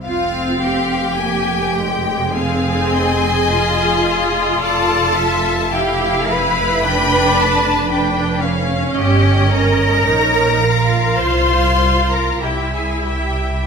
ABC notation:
X:1
M:4/4
L:1/16
Q:1/4=54
K:Fm
V:1 name="Violin section"
f2 g6 a8 | =a4 g2 =b8 z2 | g2 b6 c'3 b g a g2 |]
V:2 name="Violin section"
f4 a2 g2 f2 e6 | =d2 =e2 f4 g2 =a2 g2 f2 | e4 d2 f6 =e4 |]
V:3 name="Cello section"
F2 G6 A8 | =A4 G2 =B8 z2 | G2 B6 c3 B G A G2 |]
V:4 name="Viola section"
C4 B,2 A,2 C4 F4- | F4 =E4 =D4 D2 _D2- | D4 E2 F6 =E4 |]
V:5 name="Double bass section" clef=bass
F,,,16 | F,,,16 | G,,,4 B,,,4 C,,4 C,,4 |]